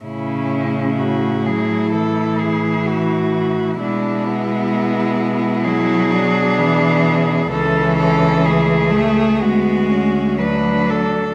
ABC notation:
X:1
M:4/4
L:1/8
Q:1/4=64
K:A
V:1 name="Cello"
E2 F G A G F2 | E4 G4 | A A G2 F2 B A |]
V:2 name="Cello"
C2 E6 | D B,3 E D3 | C2 A,2 B, C D2 |]
V:3 name="Cello" clef=bass
C,3 F, E,4 | G,4 F,2 E,2 | E,3 A, G,2 F,2 |]
V:4 name="Cello" clef=bass
A,,8 | B,,8 | C,,4 D,,4 |]